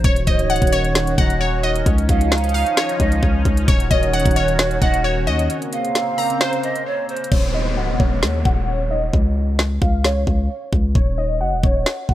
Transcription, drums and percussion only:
0.04 kick, closed hi-hat
0.16 closed hi-hat
0.27 kick, closed hi-hat
0.39 closed hi-hat
0.50 closed hi-hat
0.56 closed hi-hat
0.62 kick, closed hi-hat
0.67 closed hi-hat
0.72 closed hi-hat
0.84 closed hi-hat
0.95 snare, closed hi-hat
1.07 closed hi-hat
1.18 kick, closed hi-hat
1.30 closed hi-hat
1.63 closed hi-hat
1.76 closed hi-hat
1.86 kick, closed hi-hat
1.98 closed hi-hat
2.09 kick, closed hi-hat
2.21 closed hi-hat
2.32 snare, closed hi-hat
2.38 closed hi-hat
2.44 closed hi-hat
2.49 closed hi-hat
2.54 open hi-hat
2.66 closed hi-hat
2.77 snare, closed hi-hat
2.89 closed hi-hat
3.00 kick, closed hi-hat
3.12 closed hi-hat
3.23 kick
3.45 kick, closed hi-hat
3.57 closed hi-hat
3.68 kick, closed hi-hat
3.80 closed hi-hat
3.91 kick, closed hi-hat
4.03 closed hi-hat
4.13 closed hi-hat
4.19 closed hi-hat
4.25 kick, closed hi-hat
4.31 closed hi-hat
4.36 closed hi-hat
4.48 closed hi-hat
4.59 snare, closed hi-hat
4.71 closed hi-hat
4.82 kick, closed hi-hat
4.94 closed hi-hat
5.27 closed hi-hat
5.39 closed hi-hat
5.50 closed hi-hat
5.62 closed hi-hat
5.73 closed hi-hat
5.85 closed hi-hat
5.95 snare, closed hi-hat
6.18 open hi-hat
6.30 closed hi-hat
6.41 snare, closed hi-hat
6.53 closed hi-hat
6.63 closed hi-hat
6.76 closed hi-hat
7.09 closed hi-hat
7.17 closed hi-hat
7.24 closed hi-hat
7.32 kick, crash
8.00 kick
8.23 snare
8.45 kick
9.13 kick
9.59 snare
9.82 kick
10.04 snare
10.27 kick
10.73 kick
10.95 kick
11.63 kick
11.86 snare
12.09 kick

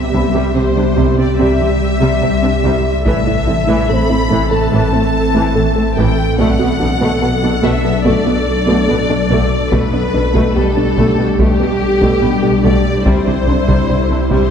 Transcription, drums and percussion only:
3.06 taiko
9.72 taiko
10.35 taiko
10.97 taiko
11.39 taiko
12.02 taiko
13.06 taiko
13.68 taiko
14.30 taiko

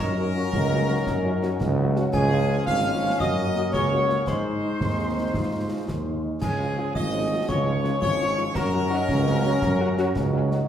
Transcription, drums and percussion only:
0.53 concert bass drum, snare
1.07 concert bass drum, snare
1.42 snare
1.60 concert bass drum, snare
1.96 snare
2.13 concert bass drum, snare, crash
2.67 concert bass drum, snare
3.20 concert bass drum, snare
3.56 snare
3.73 concert bass drum, snare
4.09 snare
4.27 concert bass drum, snare, crash
4.81 concert bass drum, snare
5.34 concert bass drum, snare
5.88 concert bass drum, snare
6.42 concert bass drum, snare, crash
6.95 concert bass drum, snare
7.49 concert bass drum, snare
7.84 snare
8.02 concert bass drum, snare
8.38 snare
8.55 concert bass drum, snare, crash
9.09 concert bass drum, snare
9.62 concert bass drum, snare
9.98 snare
10.16 concert bass drum, snare
10.51 snare

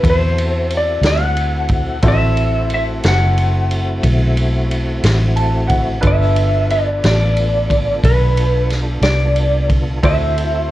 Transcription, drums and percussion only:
0.04 kick, ride
0.38 ride
0.70 ride
1.03 snare, ride
1.37 ride
1.68 kick, ride
2.02 kick, ride
2.37 ride
2.70 ride
3.03 snare, ride
3.37 ride
3.71 ride
4.04 kick, ride
4.37 ride
4.71 ride
5.04 snare, ride
5.37 ride
5.70 kick, ride
6.03 kick, ride
6.36 ride
6.70 ride
7.04 snare, ride
7.37 ride
7.70 kick, ride
8.04 kick, ride
8.37 ride
8.70 snare, ride
9.02 snare, ride
9.36 ride
9.70 kick, ride
10.03 kick, ride
10.38 ride

